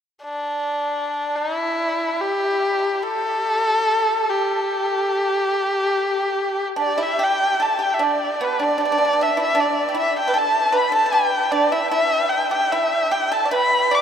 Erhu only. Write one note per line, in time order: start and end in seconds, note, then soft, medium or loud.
0.23 1.37 D4 medium
1.36 1.55 D#4 medium
1.55 2.22 E4 medium
2.21 3.04 G4 medium
3.03 4.31 A4 medium
4.30 6.68 G4 medium
6.80 7.04 D5 medium
7.02 7.25 E5 medium
7.23 7.64 G5 medium
7.62 7.83 A5 medium
7.82 7.95 G5 medium
7.93 8.04 E5 medium
8.03 8.45 D5 medium
8.44 8.65 B4 medium
8.63 8.81 D5 medium
8.82 9.24 D5 medium
9.22 9.40 E5 medium
9.42 9.62 E5 medium
9.60 9.98 D5 medium
9.99 10.16 E5 medium
10.19 10.40 G5 medium
10.38 10.79 A5 medium
10.78 10.95 B5 medium
10.95 11.15 A5 medium
11.13 11.53 G5 medium
11.51 11.73 D5 medium
11.71 11.90 E5 medium
11.90 12.30 E5 medium
12.29 12.50 G5 medium
12.52 12.73 G5 medium
12.71 13.13 E5 medium
13.12 13.35 G5 medium
13.33 13.52 A5 medium
13.53 13.96 B5 medium
13.94 14.02 D6 medium